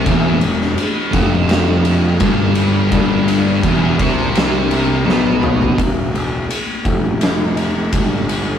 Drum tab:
RD |x-x-x-x-x-x-x-x-|x-x-x-x-x-x-----|x-x-x-x-x-x-x-x-|
SD |---o----o-------|--------o---o---|--------o-------|
T1 |----------------|-------------o--|----------------|
T2 |----------------|--------------o-|----------------|
FT |----------------|---------------o|----------------|
BD |o-----o-----o---|o---o-o---------|o-----o-----o---|